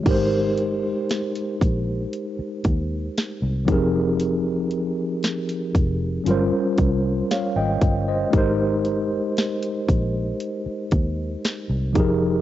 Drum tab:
CC |x---------------|----------------|----------------|
HH |x-x-xxx-x-x-x-x-|x-x-xxx-x-x-x-x-|x-x-xxx-x-x-x-x-|
SD |----o-------o---|----o-------o---|----o-------o---|
BD |o-----o---o---o-|------o---o---o-|o-----o---o---o-|